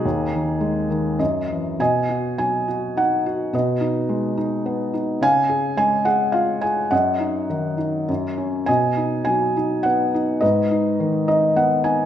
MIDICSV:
0, 0, Header, 1, 2, 480
1, 0, Start_track
1, 0, Key_signature, 5, "major"
1, 0, Tempo, 582524
1, 43, Time_signature, 3, 2, 24, 8
1, 2445, Tempo, 563380
1, 5325, Tempo, 584795
1, 8205, Tempo, 566572
1, 10068, End_track
2, 0, Start_track
2, 0, Title_t, "Felt piano"
2, 0, Program_c, 0, 0
2, 0, Control_c, 0, 64, 127
2, 0, Note_on_c, 0, 63, 69
2, 0, Note_on_c, 0, 68, 89
2, 42, Note_on_c, 0, 39, 58
2, 52, Control_c, 0, 64, 0
2, 197, Control_c, 0, 64, 127
2, 273, Note_on_c, 0, 51, 48
2, 499, Note_on_c, 0, 56, 48
2, 731, Note_off_c, 0, 51, 0
2, 743, Note_on_c, 0, 51, 42
2, 952, Note_off_c, 0, 68, 0
2, 960, Note_off_c, 0, 39, 0
2, 962, Note_off_c, 0, 63, 0
2, 972, Note_off_c, 0, 56, 0
2, 982, Note_off_c, 0, 51, 0
2, 982, Note_on_c, 0, 42, 57
2, 982, Note_on_c, 0, 75, 54
2, 1001, Control_c, 0, 64, 0
2, 1146, Control_c, 0, 64, 127
2, 1238, Note_on_c, 0, 52, 41
2, 1447, Note_off_c, 0, 75, 0
2, 1465, Note_off_c, 0, 42, 0
2, 1476, Note_off_c, 0, 52, 0
2, 1478, Note_on_c, 0, 47, 54
2, 1484, Note_on_c, 0, 80, 80
2, 1492, Control_c, 0, 64, 0
2, 1493, Note_on_c, 0, 75, 63
2, 1652, Control_c, 0, 64, 127
2, 1723, Note_on_c, 0, 66, 47
2, 1952, Note_off_c, 0, 80, 0
2, 1963, Note_on_c, 0, 54, 45
2, 1964, Note_on_c, 0, 80, 78
2, 2177, Note_off_c, 0, 75, 0
2, 2196, Note_off_c, 0, 66, 0
2, 2209, Note_on_c, 0, 66, 46
2, 2446, Note_on_c, 0, 63, 48
2, 2452, Note_on_c, 0, 78, 79
2, 2459, Note_off_c, 0, 80, 0
2, 2682, Note_off_c, 0, 66, 0
2, 2695, Note_on_c, 0, 66, 48
2, 2895, Note_off_c, 0, 47, 0
2, 2901, Note_off_c, 0, 54, 0
2, 2917, Note_off_c, 0, 63, 0
2, 2927, Note_off_c, 0, 66, 0
2, 2927, Note_on_c, 0, 47, 60
2, 2937, Note_on_c, 0, 71, 47
2, 2938, Note_on_c, 0, 75, 65
2, 2943, Control_c, 0, 64, 0
2, 2950, Note_off_c, 0, 78, 0
2, 3104, Control_c, 0, 64, 127
2, 3160, Note_on_c, 0, 63, 52
2, 3402, Note_on_c, 0, 56, 48
2, 3630, Note_off_c, 0, 63, 0
2, 3643, Note_on_c, 0, 63, 51
2, 3885, Note_on_c, 0, 59, 50
2, 4096, Note_off_c, 0, 71, 0
2, 4097, Note_off_c, 0, 75, 0
2, 4110, Note_off_c, 0, 63, 0
2, 4123, Note_on_c, 0, 63, 51
2, 4330, Note_off_c, 0, 47, 0
2, 4334, Note_off_c, 0, 56, 0
2, 4351, Note_off_c, 0, 59, 0
2, 4356, Note_on_c, 0, 49, 61
2, 4357, Note_off_c, 0, 63, 0
2, 4369, Note_on_c, 0, 77, 71
2, 4369, Note_on_c, 0, 80, 100
2, 4377, Control_c, 0, 64, 0
2, 4522, Control_c, 0, 64, 127
2, 4598, Note_on_c, 0, 68, 53
2, 4824, Note_off_c, 0, 80, 0
2, 4835, Note_on_c, 0, 56, 51
2, 4837, Note_on_c, 0, 80, 90
2, 5049, Note_off_c, 0, 77, 0
2, 5064, Note_off_c, 0, 68, 0
2, 5073, Note_on_c, 0, 78, 83
2, 5077, Note_on_c, 0, 68, 54
2, 5086, Note_off_c, 0, 80, 0
2, 5302, Note_off_c, 0, 78, 0
2, 5304, Note_on_c, 0, 77, 83
2, 5316, Note_on_c, 0, 65, 54
2, 5543, Note_off_c, 0, 68, 0
2, 5544, Note_on_c, 0, 80, 80
2, 5555, Note_on_c, 0, 68, 51
2, 5558, Note_off_c, 0, 77, 0
2, 5760, Note_off_c, 0, 49, 0
2, 5766, Note_off_c, 0, 56, 0
2, 5780, Note_off_c, 0, 65, 0
2, 5784, Note_on_c, 0, 78, 76
2, 5788, Note_off_c, 0, 68, 0
2, 5789, Note_on_c, 0, 42, 62
2, 5797, Note_off_c, 0, 80, 0
2, 5799, Note_on_c, 0, 75, 51
2, 5810, Control_c, 0, 64, 0
2, 5958, Control_c, 0, 64, 127
2, 6023, Note_on_c, 0, 63, 51
2, 6234, Note_off_c, 0, 78, 0
2, 6268, Note_on_c, 0, 51, 45
2, 6481, Note_off_c, 0, 75, 0
2, 6487, Note_off_c, 0, 63, 0
2, 6499, Note_on_c, 0, 63, 47
2, 6723, Note_off_c, 0, 42, 0
2, 6738, Note_off_c, 0, 51, 0
2, 6741, Note_off_c, 0, 63, 0
2, 6752, Note_on_c, 0, 42, 59
2, 6767, Control_c, 0, 64, 0
2, 6885, Control_c, 0, 64, 127
2, 6991, Note_on_c, 0, 61, 46
2, 7224, Note_off_c, 0, 42, 0
2, 7226, Note_on_c, 0, 80, 86
2, 7229, Note_off_c, 0, 61, 0
2, 7241, Note_on_c, 0, 47, 57
2, 7243, Note_on_c, 0, 75, 63
2, 7252, Control_c, 0, 64, 0
2, 7415, Control_c, 0, 64, 127
2, 7478, Note_on_c, 0, 63, 49
2, 7692, Note_off_c, 0, 80, 0
2, 7704, Note_on_c, 0, 80, 87
2, 7723, Note_on_c, 0, 54, 44
2, 7934, Note_off_c, 0, 75, 0
2, 7957, Note_off_c, 0, 63, 0
2, 7969, Note_on_c, 0, 63, 50
2, 8184, Note_on_c, 0, 78, 79
2, 8207, Note_off_c, 0, 80, 0
2, 8207, Note_on_c, 0, 59, 52
2, 8437, Note_off_c, 0, 63, 0
2, 8450, Note_on_c, 0, 63, 53
2, 8651, Note_off_c, 0, 47, 0
2, 8655, Note_off_c, 0, 54, 0
2, 8670, Note_on_c, 0, 75, 74
2, 8672, Note_off_c, 0, 59, 0
2, 8680, Note_off_c, 0, 63, 0
2, 8682, Note_on_c, 0, 71, 57
2, 8686, Note_on_c, 0, 44, 61
2, 8690, Note_off_c, 0, 78, 0
2, 8696, Control_c, 0, 64, 0
2, 8835, Control_c, 0, 64, 127
2, 8929, Note_on_c, 0, 63, 57
2, 9173, Note_on_c, 0, 51, 54
2, 9398, Note_off_c, 0, 63, 0
2, 9398, Note_off_c, 0, 75, 0
2, 9411, Note_on_c, 0, 63, 57
2, 9411, Note_on_c, 0, 75, 67
2, 9632, Note_off_c, 0, 75, 0
2, 9651, Note_on_c, 0, 59, 56
2, 9652, Note_on_c, 0, 78, 70
2, 9850, Note_off_c, 0, 71, 0
2, 9871, Note_off_c, 0, 78, 0
2, 9873, Note_off_c, 0, 63, 0
2, 9885, Note_on_c, 0, 63, 54
2, 9886, Note_on_c, 0, 80, 70
2, 10068, Note_off_c, 0, 44, 0
2, 10068, Note_off_c, 0, 51, 0
2, 10068, Note_off_c, 0, 59, 0
2, 10068, Note_off_c, 0, 63, 0
2, 10068, Note_off_c, 0, 80, 0
2, 10068, End_track
0, 0, End_of_file